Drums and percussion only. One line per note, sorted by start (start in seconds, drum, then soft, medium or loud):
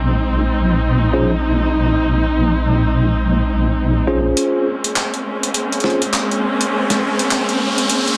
4.37 closed hi-hat medium
4.84 closed hi-hat medium
4.96 clap loud
4.96 closed hi-hat medium
5.14 closed hi-hat soft
5.43 closed hi-hat medium
5.54 closed hi-hat medium
5.72 closed hi-hat soft
5.80 snare soft
5.80 closed hi-hat soft
5.90 closed hi-hat soft
6.02 closed hi-hat medium
6.13 clap loud
6.13 closed hi-hat medium
6.31 closed hi-hat soft
6.61 closed hi-hat medium
6.90 snare soft
6.90 closed hi-hat medium
7.19 closed hi-hat medium
7.31 clap loud
7.31 closed hi-hat medium
7.49 closed hi-hat soft
7.78 closed hi-hat medium
7.89 closed hi-hat medium
8.08 closed hi-hat soft